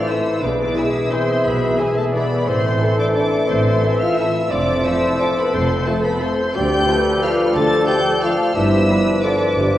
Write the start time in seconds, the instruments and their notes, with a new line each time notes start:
Already playing: bassoon E3, clarinet A4, cor anglais E5
0.08 trombone section E3 A3, french horn section E4, violin section E4 A4 E6, viola section C5, flute section E5
0.42 double bass section B1, cello section B2, bassoon E3, french horn section D4, clarinet G#4, viola section B4, flute section D5, cor anglais E5, violin section D6
0.75 trombone section E3 G#3, french horn section E4, violin section E4 G#4 E6, viola section G#4, flute section E5
1.10 trombone section E3 G#3, french horn section C4, violin section E4 G#4 C6, flute section C5, viola section E5
1.44 double bass section B1, cello section B2, french horn section B3, flute section B4, violin section B5
1.79 trombone section E3 G#3, french horn section G#3, violin section E4 G#4 G#5, flute section G#4
1.95 french horn section A3, flute section A4, violin section A5
2.12 trombone section E3 G#3, french horn section B3, violin section E4 G#4 B5, flute section B4, viola section D5
2.46 double bass section A1, cello section A2, bassoon E3, french horn section C4, clarinet A4, flute section C5, viola section C5, cor anglais E5, violin section C6
2.81 trombone section E3 A3, violin section E4 A4, viola section A4
2.98 french horn section D4, flute section D5, violin section D6
3.13 trombone section E3 A3, french horn section D4, violin section E4 A4 D6, flute section D5
3.47 double bass section A1, cello section A2, french horn section C4, flute section C5, viola section C5, violin section C6
3.84 trombone section E3 A3, violin section E4 A4, viola section E5
4.00 french horn section F4, flute section F5, violin section F6
4.17 trombone section E3 A3, french horn section E4, violin section E4 A4 E6, flute section E5
4.50 double bass section F1, cello section F2, bassoon F3, french horn section D4, clarinet A4, cor anglais C5, flute section D5, viola section D5, violin section D6
4.83 trombone section F3 A3, french horn section E4, violin section F4 A4 E6, viola section C5, flute section E5
5.19 trombone section F3 A3, french horn section D4, violin section F4 A4 D6, viola section A4, flute section D5
5.37 french horn section B3, flute section B4, violin section B5
5.53 double bass section F1, cello section F2, french horn section C4, flute section C5, violin section C6
5.86 trombone section F3 A3, french horn section A3, violin section F4 A4 A5, flute section A4
6.03 french horn section B3, flute section B4, violin section B5
6.20 trombone section F3 A3, french horn section C4, violin section F4 A4 C6, flute section C5
6.54 double bass section D2, cello section D2, bassoon F3, french horn section G4, clarinet A4, viola section D5, cor anglais D5, flute section G5, violin section G6
6.88 trombone section F3 A3, violin section F4 A4, viola section B4
7.21 trombone section F3 A3, violin section F4 A4 F6, french horn section F4, flute section F5
7.53 cello section D2, double bass section D2, viola section A4, french horn section A4, flute section A5, violin section A6
7.87 trombone section F3 A3, violin section F4 A4 G6, french horn section G4, flute section G5
8.22 trombone section F3 A3, french horn section F4, violin section F4 A4 F6, flute section F5
8.54 double bass section G1, cello section G2, bassoon F3, french horn section E4, viola section G4, clarinet B4, cor anglais D5, flute section E5, violin section E6
8.88 trombone section F3 B3, violin section F4 B4, viola section B4
9.22 trombone section F3 B3, french horn section D4, violin section F4 B4 D6, viola section A4, flute section D5
9.55 double bass section G1, cello section G2, viola section G4